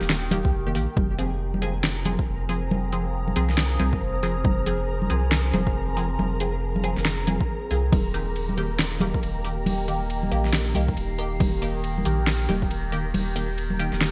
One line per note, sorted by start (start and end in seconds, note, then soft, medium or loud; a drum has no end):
0.00 0.43 D#1 loud
0.00 0.93 D#3 medium
0.00 0.93 A#3 medium
0.00 0.93 G4 medium
0.00 0.98 G4 medium
0.00 0.98 G5 medium
0.00 snare soft
0.10 snare loud
0.10 closed hi-hat soft
0.31 0.49 D#3 loud
0.31 0.49 A#3 medium
0.31 0.49 G4 loud
0.31 closed hi-hat medium
0.31 high conga medium
0.45 0.53 C#2 loud
0.45 kick medium
0.53 0.77 F1 medium
0.67 0.74 D#3 medium
0.67 0.74 A#3 medium
0.67 0.74 G4 medium
0.75 0.87 A#1 medium
0.75 0.87 D#3 medium
0.75 0.87 A#3 medium
0.75 0.87 G4 medium
0.75 open hi-hat loud
0.96 2.17 F1 loud
0.96 7.88 F3 medium
0.96 7.88 C4 medium
0.96 7.88 G#4 medium
0.96 14.11 A#4 medium
0.96 14.11 A#5 medium
0.96 kick loud
0.96 high conga medium
1.18 1.30 F3 medium
1.18 1.30 C4 medium
1.18 1.31 G#4 medium
1.18 closed hi-hat medium
1.54 high conga medium
1.62 1.74 F3 medium
1.62 1.74 C4 medium
1.62 1.74 G#4 medium
1.62 closed hi-hat medium
1.84 snare loud
2.05 2.17 F3 medium
2.05 2.17 C4 medium
2.05 2.17 G#4 medium
2.05 closed hi-hat medium
2.05 high conga medium
2.19 kick medium
2.27 3.35 F1 medium
2.49 2.61 F3 medium
2.49 2.61 C4 medium
2.49 2.61 G#4 medium
2.49 open hi-hat loud
2.71 high conga loud
2.92 3.04 F3 medium
2.92 3.04 C4 medium
2.92 3.04 G#4 medium
2.92 closed hi-hat medium
3.28 high conga medium
3.36 3.78 C2 medium
3.36 3.48 F3 medium
3.36 3.48 C4 medium
3.36 3.48 G#4 loud
3.36 closed hi-hat medium
3.49 snare soft
3.58 snare loud
3.79 4.00 C2 loud
3.79 3.91 F3 medium
3.79 3.91 C4 medium
3.79 3.91 G#4 medium
3.79 closed hi-hat medium
3.79 high conga medium
3.93 kick medium
4.01 5.09 F1 loud
4.23 4.35 F3 medium
4.23 4.35 C4 medium
4.23 4.35 G#4 medium
4.23 open hi-hat medium
4.44 kick loud
4.44 high conga loud
4.66 4.78 F3 medium
4.66 4.78 C4 medium
4.66 4.78 G#4 medium
4.66 closed hi-hat medium
5.02 high conga medium
5.10 5.52 C2 medium
5.10 5.22 F3 medium
5.10 5.22 C4 medium
5.10 5.22 G#4 loud
5.10 closed hi-hat medium
5.32 snare loud
5.53 6.17 F1 loud
5.53 5.65 F3 medium
5.53 5.65 C4 medium
5.53 5.65 G#4 medium
5.53 closed hi-hat medium
5.53 high conga loud
5.67 kick medium
5.97 6.09 F3 medium
5.97 6.09 C4 medium
5.97 6.09 G#4 medium
5.97 open hi-hat medium
6.19 6.95 F1 loud
6.19 high conga medium
6.40 6.52 F3 medium
6.40 6.52 C4 medium
6.40 6.52 G#4 medium
6.40 closed hi-hat medium
6.76 high conga medium
6.84 6.96 F3 medium
6.84 6.96 C4 medium
6.84 6.96 G#4 loud
6.84 closed hi-hat medium
6.97 7.39 F1 loud
6.97 snare soft
7.05 snare loud
7.27 7.39 F3 medium
7.27 7.39 C4 medium
7.27 7.39 G#4 medium
7.27 closed hi-hat medium
7.27 high conga medium
7.41 kick medium
7.71 7.91 C2 medium
7.71 7.83 F3 medium
7.71 7.83 C4 medium
7.71 7.83 G#4 medium
7.71 open hi-hat medium
7.92 9.13 D#1 loud
7.92 14.11 D#3 medium
7.92 14.11 A#3 medium
7.92 14.11 G4 medium
7.92 kick loud
7.92 ride medium
7.92 high conga loud
8.14 8.26 D#3 medium
8.14 8.26 A#3 medium
8.14 8.26 G4 medium
8.14 closed hi-hat medium
8.36 ride soft
8.49 high conga medium
8.58 8.70 D#3 medium
8.58 8.70 A#3 medium
8.58 8.70 G4 loud
8.58 closed hi-hat medium
8.79 snare loud
8.79 ride medium
9.00 9.13 D#3 medium
9.00 9.13 A#3 medium
9.00 9.13 G4 medium
9.00 closed hi-hat medium
9.00 high conga loud
9.14 kick medium
9.23 10.31 D#1 medium
9.23 ride soft
9.44 9.57 D#3 medium
9.44 9.57 A#3 medium
9.44 9.57 G4 medium
9.44 open hi-hat medium
9.66 ride medium
9.66 high conga medium
9.88 10.00 D#3 medium
9.88 10.00 A#3 medium
9.88 10.00 G4 medium
9.88 closed hi-hat medium
10.10 ride soft
10.23 high conga medium
10.32 10.74 A#1 medium
10.32 10.44 D#3 medium
10.32 10.44 A#3 medium
10.32 10.44 G4 loud
10.32 closed hi-hat medium
10.45 snare soft
10.53 snare loud
10.53 ride medium
10.75 10.95 C2 loud
10.75 10.87 D#3 medium
10.75 10.87 A#3 medium
10.75 10.87 G4 medium
10.75 closed hi-hat medium
10.75 high conga medium
10.88 kick medium
10.96 12.04 D#1 loud
10.96 ride soft
11.18 11.31 D#3 medium
11.18 11.31 A#3 medium
11.18 11.31 G4 loud
11.18 open hi-hat medium
11.40 kick loud
11.40 ride medium
11.40 high conga medium
11.62 11.74 D#3 medium
11.62 11.74 A#3 medium
11.62 11.74 G4 medium
11.62 closed hi-hat medium
11.84 ride soft
11.98 high conga medium
12.05 12.48 A#1 medium
12.05 12.17 D#3 medium
12.05 12.17 A#3 medium
12.05 12.17 G4 loud
12.05 closed hi-hat medium
12.27 snare loud
12.27 ride medium
12.49 13.13 D#1 loud
12.49 12.61 D#3 medium
12.49 12.61 A#3 medium
12.49 12.61 G4 medium
12.49 closed hi-hat medium
12.49 high conga medium
12.62 kick medium
12.71 ride medium
12.92 13.04 D#3 medium
12.92 13.04 A#3 medium
12.92 13.04 G4 loud
12.92 open hi-hat loud
13.14 13.91 D#1 loud
13.14 ride medium
13.14 high conga medium
13.36 13.48 D#3 medium
13.36 13.48 A#3 medium
13.36 13.48 G4 medium
13.36 closed hi-hat medium
13.58 ride soft
13.70 high conga medium
13.79 13.91 D#3 medium
13.79 13.91 A#3 medium
13.79 13.91 G4 loud
13.79 closed hi-hat medium
13.93 14.11 D#1 loud
13.93 snare soft
14.01 snare loud
14.01 closed hi-hat soft
14.01 ride medium